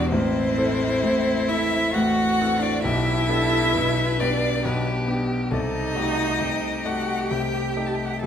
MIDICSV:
0, 0, Header, 1, 5, 480
1, 0, Start_track
1, 0, Tempo, 900901
1, 62, Time_signature, 3, 2, 24, 8
1, 4403, End_track
2, 0, Start_track
2, 0, Title_t, "Violin"
2, 0, Program_c, 0, 40
2, 50, Note_on_c, 0, 72, 118
2, 791, Note_on_c, 0, 76, 114
2, 799, Note_off_c, 0, 72, 0
2, 1035, Note_on_c, 0, 78, 103
2, 1043, Note_off_c, 0, 76, 0
2, 1396, Note_on_c, 0, 74, 101
2, 1404, Note_off_c, 0, 78, 0
2, 1504, Note_off_c, 0, 74, 0
2, 1507, Note_on_c, 0, 76, 126
2, 2239, Note_on_c, 0, 74, 107
2, 2247, Note_off_c, 0, 76, 0
2, 2475, Note_on_c, 0, 71, 89
2, 2483, Note_off_c, 0, 74, 0
2, 2707, Note_off_c, 0, 71, 0
2, 2938, Note_on_c, 0, 75, 113
2, 3651, Note_on_c, 0, 78, 105
2, 3659, Note_off_c, 0, 75, 0
2, 3888, Note_on_c, 0, 79, 88
2, 3896, Note_off_c, 0, 78, 0
2, 4188, Note_on_c, 0, 81, 65
2, 4196, Note_off_c, 0, 79, 0
2, 4234, Note_on_c, 0, 79, 73
2, 4242, Note_off_c, 0, 81, 0
2, 4290, Note_on_c, 0, 78, 76
2, 4298, Note_off_c, 0, 79, 0
2, 4332, Note_on_c, 0, 79, 76
2, 4340, Note_off_c, 0, 78, 0
2, 4376, Note_off_c, 0, 79, 0
2, 4379, Note_on_c, 0, 81, 119
2, 4403, Note_off_c, 0, 81, 0
2, 4403, End_track
3, 0, Start_track
3, 0, Title_t, "Violin"
3, 0, Program_c, 1, 40
3, 0, Note_on_c, 1, 66, 93
3, 61, Note_on_c, 1, 64, 94
3, 69, Note_off_c, 1, 66, 0
3, 1032, Note_off_c, 1, 64, 0
3, 1042, Note_on_c, 1, 66, 91
3, 1514, Note_on_c, 1, 67, 81
3, 1522, Note_off_c, 1, 66, 0
3, 1747, Note_on_c, 1, 69, 85
3, 1755, Note_off_c, 1, 67, 0
3, 1987, Note_on_c, 1, 71, 94
3, 1995, Note_off_c, 1, 69, 0
3, 2464, Note_off_c, 1, 71, 0
3, 2467, Note_on_c, 1, 67, 91
3, 2935, Note_on_c, 1, 69, 82
3, 2943, Note_off_c, 1, 67, 0
3, 3172, Note_on_c, 1, 66, 75
3, 3180, Note_off_c, 1, 69, 0
3, 3410, Note_on_c, 1, 67, 74
3, 3418, Note_off_c, 1, 66, 0
3, 4376, Note_off_c, 1, 67, 0
3, 4379, Note_on_c, 1, 69, 90
3, 4403, Note_off_c, 1, 69, 0
3, 4403, End_track
4, 0, Start_track
4, 0, Title_t, "Cello"
4, 0, Program_c, 2, 42
4, 0, Note_on_c, 2, 62, 92
4, 60, Note_off_c, 2, 62, 0
4, 65, Note_on_c, 2, 60, 103
4, 789, Note_on_c, 2, 64, 102
4, 797, Note_off_c, 2, 60, 0
4, 1023, Note_on_c, 2, 66, 97
4, 1031, Note_off_c, 2, 64, 0
4, 1380, Note_on_c, 2, 62, 90
4, 1388, Note_off_c, 2, 66, 0
4, 1492, Note_on_c, 2, 64, 108
4, 1500, Note_off_c, 2, 62, 0
4, 2227, Note_off_c, 2, 64, 0
4, 2231, Note_on_c, 2, 62, 99
4, 2466, Note_on_c, 2, 59, 80
4, 2474, Note_off_c, 2, 62, 0
4, 2702, Note_off_c, 2, 59, 0
4, 2927, Note_on_c, 2, 63, 101
4, 3652, Note_on_c, 2, 66, 92
4, 3660, Note_off_c, 2, 63, 0
4, 3891, Note_on_c, 2, 67, 79
4, 3899, Note_off_c, 2, 66, 0
4, 4372, Note_off_c, 2, 67, 0
4, 4375, Note_on_c, 2, 69, 106
4, 4403, Note_off_c, 2, 69, 0
4, 4403, End_track
5, 0, Start_track
5, 0, Title_t, "Grand piano"
5, 0, Program_c, 3, 0
5, 0, Control_c, 3, 64, 127
5, 0, Note_on_c, 3, 28, 84
5, 0, Note_on_c, 3, 40, 80
5, 0, Note_on_c, 3, 59, 63
5, 0, Note_on_c, 3, 64, 62
5, 0, Note_on_c, 3, 67, 68
5, 62, Note_on_c, 3, 45, 80
5, 63, Note_on_c, 3, 33, 92
5, 71, Control_c, 3, 64, 0
5, 73, Note_off_c, 3, 40, 0
5, 73, Note_off_c, 3, 59, 0
5, 74, Note_off_c, 3, 64, 0
5, 77, Note_off_c, 3, 28, 0
5, 77, Note_off_c, 3, 67, 0
5, 154, Control_c, 3, 64, 127
5, 298, Note_off_c, 3, 45, 0
5, 299, Note_off_c, 3, 33, 0
5, 304, Note_on_c, 3, 60, 63
5, 308, Note_on_c, 3, 64, 60
5, 309, Note_on_c, 3, 69, 74
5, 527, Note_off_c, 3, 60, 0
5, 529, Note_off_c, 3, 64, 0
5, 530, Note_off_c, 3, 69, 0
5, 550, Note_on_c, 3, 45, 77
5, 551, Note_on_c, 3, 33, 68
5, 785, Note_off_c, 3, 45, 0
5, 786, Note_off_c, 3, 33, 0
5, 801, Note_on_c, 3, 60, 58
5, 802, Note_on_c, 3, 64, 58
5, 805, Note_on_c, 3, 69, 70
5, 1016, Note_off_c, 3, 60, 0
5, 1017, Note_off_c, 3, 64, 0
5, 1018, Note_off_c, 3, 69, 0
5, 1041, Note_on_c, 3, 45, 71
5, 1042, Note_on_c, 3, 33, 79
5, 1268, Note_off_c, 3, 33, 0
5, 1268, Note_off_c, 3, 45, 0
5, 1282, Note_on_c, 3, 60, 60
5, 1285, Note_on_c, 3, 64, 58
5, 1286, Note_on_c, 3, 69, 65
5, 1492, Note_off_c, 3, 60, 0
5, 1494, Note_off_c, 3, 64, 0
5, 1495, Note_off_c, 3, 69, 0
5, 1514, Note_on_c, 3, 47, 76
5, 1516, Control_c, 3, 64, 0
5, 1518, Note_on_c, 3, 35, 89
5, 1595, Control_c, 3, 64, 127
5, 1744, Note_off_c, 3, 47, 0
5, 1746, Note_off_c, 3, 35, 0
5, 1751, Note_on_c, 3, 59, 62
5, 1754, Note_on_c, 3, 62, 62
5, 1757, Note_on_c, 3, 67, 64
5, 1972, Note_off_c, 3, 59, 0
5, 1973, Note_off_c, 3, 62, 0
5, 1975, Note_off_c, 3, 67, 0
5, 1997, Note_on_c, 3, 47, 73
5, 1998, Note_on_c, 3, 35, 72
5, 2230, Note_off_c, 3, 47, 0
5, 2231, Note_off_c, 3, 35, 0
5, 2242, Note_on_c, 3, 59, 62
5, 2243, Note_on_c, 3, 62, 63
5, 2244, Note_on_c, 3, 67, 64
5, 2456, Note_off_c, 3, 59, 0
5, 2456, Note_off_c, 3, 62, 0
5, 2457, Note_off_c, 3, 67, 0
5, 2477, Note_on_c, 3, 47, 75
5, 2479, Note_on_c, 3, 35, 75
5, 2701, Note_off_c, 3, 47, 0
5, 2702, Note_off_c, 3, 35, 0
5, 2703, Note_on_c, 3, 59, 64
5, 2708, Note_on_c, 3, 62, 57
5, 2708, Note_on_c, 3, 67, 64
5, 2914, Note_off_c, 3, 59, 0
5, 2916, Note_off_c, 3, 62, 0
5, 2917, Note_off_c, 3, 67, 0
5, 2938, Note_on_c, 3, 36, 86
5, 2940, Note_on_c, 3, 48, 77
5, 2944, Control_c, 3, 64, 0
5, 3023, Control_c, 3, 64, 127
5, 3166, Note_off_c, 3, 36, 0
5, 3167, Note_off_c, 3, 48, 0
5, 3173, Note_on_c, 3, 57, 59
5, 3176, Note_on_c, 3, 63, 65
5, 3179, Note_on_c, 3, 67, 69
5, 3391, Note_off_c, 3, 57, 0
5, 3392, Note_off_c, 3, 63, 0
5, 3394, Note_off_c, 3, 67, 0
5, 3413, Note_on_c, 3, 36, 69
5, 3413, Note_on_c, 3, 48, 67
5, 3643, Note_off_c, 3, 48, 0
5, 3644, Note_off_c, 3, 36, 0
5, 3652, Note_on_c, 3, 57, 59
5, 3652, Note_on_c, 3, 63, 60
5, 3657, Note_on_c, 3, 67, 67
5, 3869, Note_off_c, 3, 57, 0
5, 3869, Note_off_c, 3, 63, 0
5, 3871, Note_off_c, 3, 67, 0
5, 3893, Note_on_c, 3, 36, 70
5, 3893, Note_on_c, 3, 48, 73
5, 4128, Note_off_c, 3, 36, 0
5, 4128, Note_off_c, 3, 48, 0
5, 4135, Note_on_c, 3, 57, 59
5, 4138, Note_on_c, 3, 63, 56
5, 4141, Note_on_c, 3, 67, 61
5, 4359, Note_off_c, 3, 57, 0
5, 4360, Note_off_c, 3, 63, 0
5, 4362, Note_off_c, 3, 67, 0
5, 4384, Note_on_c, 3, 48, 72
5, 4385, Note_on_c, 3, 36, 84
5, 4388, Control_c, 3, 64, 0
5, 4403, Note_off_c, 3, 36, 0
5, 4403, Note_off_c, 3, 48, 0
5, 4403, End_track
0, 0, End_of_file